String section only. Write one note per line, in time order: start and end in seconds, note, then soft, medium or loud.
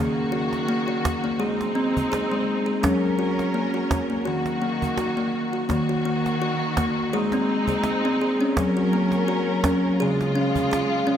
0.00 1.39 D#3 medium
0.00 1.40 A#3 medium
0.00 1.40 F#4 medium
1.41 2.83 G#3 medium
1.41 2.83 C4 medium
1.41 2.83 D#4 medium
2.83 4.25 F#3 medium
2.83 4.26 C#4 medium
2.83 4.26 A#4 medium
4.27 5.69 D#3 medium
4.27 5.69 A#3 medium
4.27 5.69 F#4 medium
5.70 7.13 D#3 medium
5.70 7.12 A#3 medium
5.70 7.12 F#4 medium
7.15 8.57 G#3 medium
7.15 8.57 C4 medium
7.15 8.57 D#4 medium
8.57 10.00 F#3 medium
8.57 10.00 C#4 medium
8.57 10.00 A#4 medium
10.01 11.17 C#3 medium
10.01 11.17 G#3 medium
10.01 11.17 F4 medium